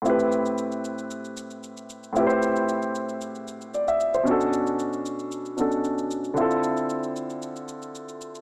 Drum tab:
SH |xxxxxxxxxxxxxxxx|xxxxxxxxxxxxxxxx|xxxxxxxxxxxxxxxx|xxxxxxxxxxxxxxxx|